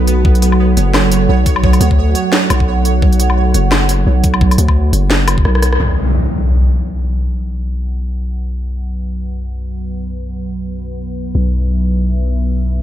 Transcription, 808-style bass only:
Already playing: B1
0.25 B1
0.77 F#1
1.29 B1
1.81 D2
2.50 B1
3.03 B1
3.54 F#1
4.07 B1
4.58 D2
4.93 F#1
5.45 B1
5.80 B1
11.35 B1

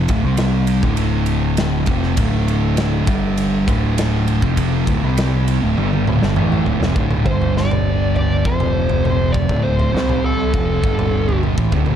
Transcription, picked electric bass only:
0.09 D1
0.24 C2
0.83 D1
1.87 F1
2.18 D1
3.08 G1
3.68 D1
4.43 F1
4.87 D1
5.03 C2
5.63 D1
5.78 G1
6.07 D1
6.22 G1
6.37 A1
6.66 D1
6.81 F1
6.96 D1
7.26 G1
8.46 F1
9.49 D1
9.95 C2
10.54 F1
10.84 G1
11.58 A1
11.73 D1

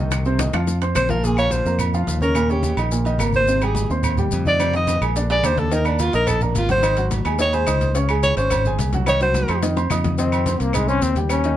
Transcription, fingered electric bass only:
Already playing: C2
0.54 F2
0.96 A#1
1.65 F2
2.07 D#2
2.77 A#1
3.20 G#1
3.90 D#2
4.33 F2
5.01 A#1
5.44 D#2
6.13 A#1
6.55 G#1
7.25 D#2
7.68 C#2
8.37 G#1
8.79 C2
9.49 F2
9.91 F2
10.60 C2
11.02 D#2

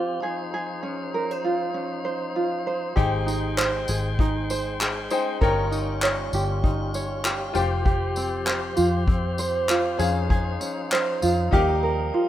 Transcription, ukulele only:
Already playing: C4 F4 G4 C5
0.23 G#4
0.54 G#4
0.83 C#4
1.14 A#4
1.31 C5
1.44 F4
1.74 C#4
2.05 C5
2.36 F4
2.67 C5
2.96 G4
3.26 D#4
3.57 C5
3.89 G#4
4.20 D#4
4.50 C5
4.81 G#4
5.11 C5
5.41 A#4
5.71 D#4
6.03 C#5
6.34 G4
6.63 D#4
6.95 C#5
7.25 G4
7.55 G4
7.85 G4
8.17 C4
8.46 C5
8.76 F4
9.07 C4
9.39 C5
9.70 F4
9.99 G#4
10.30 G#4
10.60 C#4
10.92 C5
11.22 F4
11.53 G4
11.83 A#4
12.14 F4

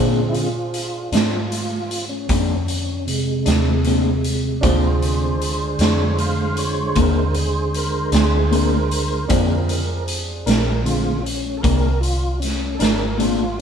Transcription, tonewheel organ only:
Already playing: D3 G#3 C4
0.29 E4
0.34 F4
2.09 C#4
2.50 C#4
3.07 C3 G#3
4.63 D3 G#3 C5
5.81 C#5
6.20 F5
6.59 C#5
7.00 A#4
7.39 G#4
7.76 A#4
8.15 G#4
8.53 A#4
9.30 D3 G#3 C4
10.46 A#4
10.84 D3 G#3 C4 F4
11.22 C#4
11.57 A4
11.61 A#4
12.01 F4
12.40 C#4
12.75 A4
12.79 A#4
13.22 F4

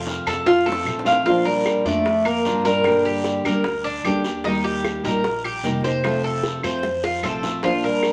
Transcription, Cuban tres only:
Already playing: F5
0.27 A4
0.46 F4
0.66 A4
1.06 F5
1.26 F4
1.45 A#4
1.86 D5
2.25 A#4
2.65 A#4
3.05 G4
3.45 A#4
3.84 D4
4.05 G4
4.45 D#4
4.64 G4
5.05 A#4
5.45 G4
5.84 C5
6.24 A4
6.64 C5
7.04 F4
7.23 A4
7.64 F4
7.84 A#4

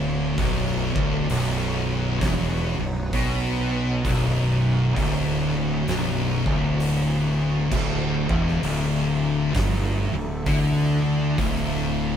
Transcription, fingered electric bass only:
Already playing: D1
0.38 B0
0.96 D1
1.30 B0
2.22 E1
2.79 B0
3.13 B1
4.05 B0
4.97 D1
5.88 B0
6.46 D1
7.72 D1
8.29 E1
8.64 D1
9.55 G1
10.13 D1
10.47 D2
11.39 D1

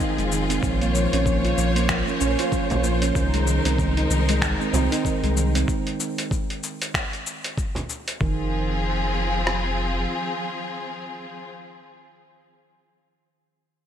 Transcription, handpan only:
0.00 D#3
0.18 G#3
0.31 D#3
0.49 C4
0.62 F3
0.82 A#3
0.95 F3
1.13 C#4
1.25 F3
1.45 F4
1.57 F3
1.76 A#3
1.89 F3
2.08 C#4
2.21 C#4
2.39 F4
2.52 F3
2.71 A#3
2.84 F3
3.02 C#4
3.16 D#3
3.34 G#3
3.47 D#3
3.66 C4
3.79 D#3
3.98 D#4
4.10 D#3
4.29 G#3
4.42 D#3
4.61 C4
4.74 C4
4.92 D#4
5.05 D#3
5.24 G#3
5.37 D#3
5.55 C4
8.21 D#3

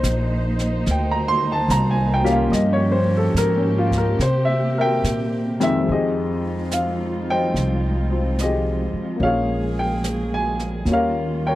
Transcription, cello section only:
Already playing: A#3 D#4 C5
2.50 F3 C#4 G4
4.19 C3 C4
5.86 F3 G#3 C4 D#4 F4
9.21 A#3 G#4
10.87 D#3 G3 A#3 F4

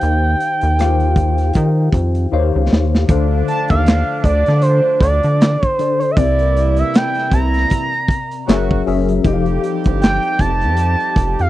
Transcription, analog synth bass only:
0.03 D#2
0.63 D#2
1.56 D#3
1.94 F2
2.33 D#2
2.56 C#2
2.73 D#2
3.10 D2
3.71 D#2
4.25 D2
4.48 D3
5.02 D2
5.24 D3
6.17 C2
7.33 C2
8.49 F#1
8.88 F#1
9.26 F1
9.87 G1
10.40 F1
10.64 F2
11.17 F1
11.40 F2

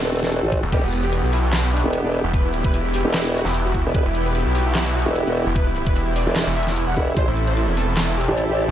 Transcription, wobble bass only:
Already playing: E1
0.43 A1
0.72 E1
1.84 E1
2.04 E1
3.05 E1
3.85 E1
3.95 E1
5.06 E1
5.26 E1
6.27 E1
6.97 E1
7.17 A1
8.28 A1
8.48 A1

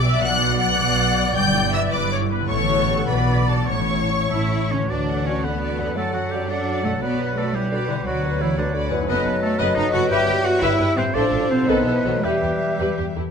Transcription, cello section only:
Already playing: B2
0.22 B2
0.79 B2
1.35 G2
1.92 G2
2.50 A2
3.08 B2
3.70 A2
4.31 A2 E4
4.71 C#4
4.90 D4
5.25 C#4
5.43 B3
5.96 A3
6.13 F#3
6.31 G3
6.49 D4
6.84 A3
7.01 B3
7.36 A3
7.54 G3
8.06 F#3
8.40 E3
8.57 D3
9.08 B3
9.42 A3
9.59 B3
9.76 D#4
9.93 F#4
10.10 G4
10.44 F#4
10.61 E4
10.97 C4
11.15 D4
11.50 C4
11.68 B3
12.23 G3

